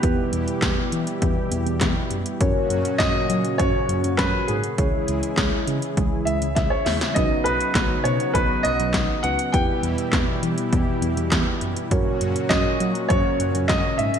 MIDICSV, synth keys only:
0, 0, Header, 1, 2, 480
1, 0, Start_track
1, 0, Tempo, 594059
1, 25, Time_signature, 4, 2, 24, 8
1, 11467, End_track
2, 0, Start_track
2, 0, Title_t, "Synth keys"
2, 0, Program_c, 0, 88
2, 24, Note_on_c, 0, 59, 67
2, 24, Note_on_c, 0, 64, 61
2, 24, Note_on_c, 0, 67, 62
2, 24, Note_on_c, 0, 71, 76
2, 1912, Note_off_c, 0, 59, 0
2, 1912, Note_off_c, 0, 64, 0
2, 1912, Note_off_c, 0, 67, 0
2, 1912, Note_off_c, 0, 71, 0
2, 1944, Note_on_c, 0, 61, 80
2, 1945, Note_on_c, 0, 66, 74
2, 1945, Note_on_c, 0, 70, 73
2, 1945, Note_on_c, 0, 73, 90
2, 3356, Note_off_c, 0, 61, 0
2, 3356, Note_off_c, 0, 66, 0
2, 3356, Note_off_c, 0, 70, 0
2, 3356, Note_off_c, 0, 73, 0
2, 3384, Note_on_c, 0, 61, 54
2, 3384, Note_on_c, 0, 70, 47
2, 3384, Note_on_c, 0, 73, 58
2, 3385, Note_on_c, 0, 66, 47
2, 3853, Note_off_c, 0, 73, 0
2, 3854, Note_off_c, 0, 61, 0
2, 3863, Note_on_c, 0, 61, 67
2, 3863, Note_on_c, 0, 64, 63
2, 3863, Note_on_c, 0, 68, 64
2, 3863, Note_on_c, 0, 73, 75
2, 3865, Note_off_c, 0, 66, 0
2, 3865, Note_off_c, 0, 70, 0
2, 5752, Note_off_c, 0, 61, 0
2, 5752, Note_off_c, 0, 64, 0
2, 5752, Note_off_c, 0, 68, 0
2, 5752, Note_off_c, 0, 73, 0
2, 5785, Note_on_c, 0, 61, 67
2, 5785, Note_on_c, 0, 63, 61
2, 5785, Note_on_c, 0, 66, 62
2, 5785, Note_on_c, 0, 71, 74
2, 7433, Note_off_c, 0, 61, 0
2, 7433, Note_off_c, 0, 63, 0
2, 7433, Note_off_c, 0, 66, 0
2, 7433, Note_off_c, 0, 71, 0
2, 7466, Note_on_c, 0, 61, 50
2, 7466, Note_on_c, 0, 63, 45
2, 7466, Note_on_c, 0, 66, 44
2, 7466, Note_on_c, 0, 71, 55
2, 7696, Note_off_c, 0, 71, 0
2, 7705, Note_off_c, 0, 63, 0
2, 7706, Note_off_c, 0, 61, 0
2, 7706, Note_off_c, 0, 66, 0
2, 7706, Note_on_c, 0, 59, 68
2, 7706, Note_on_c, 0, 64, 61
2, 7706, Note_on_c, 0, 67, 63
2, 7706, Note_on_c, 0, 71, 74
2, 9593, Note_off_c, 0, 59, 0
2, 9593, Note_off_c, 0, 64, 0
2, 9593, Note_off_c, 0, 67, 0
2, 9593, Note_off_c, 0, 71, 0
2, 9626, Note_on_c, 0, 61, 84
2, 9626, Note_on_c, 0, 66, 75
2, 9626, Note_on_c, 0, 70, 75
2, 9626, Note_on_c, 0, 73, 88
2, 11467, Note_off_c, 0, 61, 0
2, 11467, Note_off_c, 0, 66, 0
2, 11467, Note_off_c, 0, 70, 0
2, 11467, Note_off_c, 0, 73, 0
2, 11467, End_track
0, 0, End_of_file